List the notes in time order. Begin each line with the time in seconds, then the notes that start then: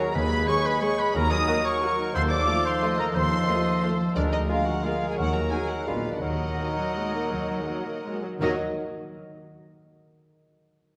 Already playing: D#3 F#3 F#4 A#4 C#5
0.00 D#4 A#4 A#5
0.14 D#2 D#3 G#3 G#4 B4 B5
0.31 G#3
0.48 G#3 D#4 G#4 C#5 C#6
0.65 G#4 B4 B5
0.82 G#3 D#4 G#4 C#5 C#6
0.99 G#3 B4 B5
1.14 D#2 D#3 F#3 A#4 A#5
1.31 F#3 D#5 D#6
1.47 A#3 D#4 F#4
1.65 A#4 C#5 C#6
1.82 A#3 F#4 A#4
1.99 D#4
2.14 D#2 D#3 F3 A4 C5 C6
2.30 D#4 D5 D6
2.47 F3 A3 F4 F5
2.65 F4 C5 C6
2.82 A3 F4 A4 D#5
2.99 F3 A#4 A#5
3.15 D#2 D#3 F3 A4 C5 C6
3.32 D#4
3.48 F3 A3 F4 D#5
3.66 F4
3.83 F3 A3 F4 A4 C5
4.00 F3
4.15 D2 D3 G#3 D4 A#4 D5
4.31 D4 D#4 D#5
4.48 G#3 A#3 F4 G#4 A#4 F5
4.66 F4 F#4 F#5
4.84 G#3 A#3 F4 G#4 A#4 F5
5.02 G#3
5.09 G#4 G#5
5.17 D#2 D#3 F#3 F#4 A#4 F#5
5.34 F#3 A#4 A#5
5.51 A#3 D#4 F#4 G#4 A#4 G#5
5.69 F#4 A#4 F#5
5.87 A#1 A#2 G#3 B3 D4 F4 G#4 B4 D5 F5
6.05 D4 B4
6.13 D4 D5
6.21 D#2 D#3 F#3 D#4 A#4 D#5 F#5
6.40 F#3
6.58 D#3 A#3 D#4 F#4
6.78 F#3 A#4
6.97 G#3 A#3 F#4
7.15 A#3 D#4
7.32 D#2 D#3 F#3
7.50 F#3
7.60 G#3
7.68 F#3 A#3 D#4 F#4
7.87 A#3 A#4
8.06 G#3 A#3 F#4
8.24 F#3 D#4
8.38 D#2 D#3 F#3 A#3 D#4 F#4 A#4 D#5
8.43 A#4 D#5